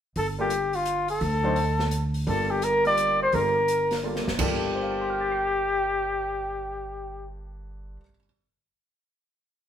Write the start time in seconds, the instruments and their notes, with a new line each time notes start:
0.16 upright bass G1, flugelhorn A4, kick, open hi-hat
0.39 grand piano G3 A#3 F4 A4, flugelhorn G4
0.50 closed hi-hat
0.73 flugelhorn F4, open hi-hat
0.85 closed hi-hat
1.08 flugelhorn A4, open hi-hat
1.21 upright bass D2, kick, open hi-hat
1.43 grand piano F#3 D4 D#4 C5
1.56 open hi-hat
1.79 snare
1.91 closed hi-hat
2.14 open hi-hat
2.27 upright bass G1, grand piano G3 A#3 F4 A4, flugelhorn A4, kick, open hi-hat
2.50 flugelhorn G4
2.62 flugelhorn A#4, closed hi-hat
2.85 grand piano G3 A#3 F4 G4, flugelhorn D5, open hi-hat
2.97 closed hi-hat
3.22 flugelhorn C5
3.32 upright bass G1, grand piano G3 A#3 F4 A4, flugelhorn A#4, kick, open hi-hat
3.68 closed hi-hat
3.91 snare, open hi-hat
4.03 grand piano G3 A#3 F4 A4
4.16 snare
4.27 upright bass F#1, snare
4.38 upright bass G1, grand piano G2 G3 A#3 F4 A4, flugelhorn G4, kick, floor tom, crash
4.75 grand piano C5
4.82 grand piano F5
4.91 grand piano A5
5.00 grand piano C6
5.10 grand piano F6
5.20 grand piano A6
5.32 grand piano C7